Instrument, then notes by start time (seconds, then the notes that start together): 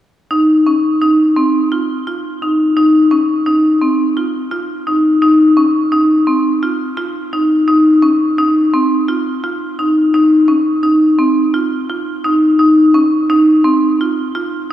marimba
0.31 D#4
0.67 C#4
1.01 D#4
1.36 C4
1.72 F4
2.07 F4
2.42 D#4
2.77 D#4
3.11 C#4
3.46 D#4
3.82 C4
4.17 F4
4.51 F4
4.87 D#4
5.22 D#4
5.57 C#4
5.92 D#4
6.27 C4
6.63 F4
6.97 F4
7.33 D#4
7.68 D#4
8.02 C#4
8.38 D#4
8.74 C4
9.08 F4
9.44 F4
9.79 D#4
10.14 D#4
10.48 C#4
10.83 D#4
11.19 C4
11.54 F4
11.90 F4
12.24 D#4
12.59 D#4
12.94 C#4
13.30 D#4
13.64 C4
14.01 F4
14.35 F4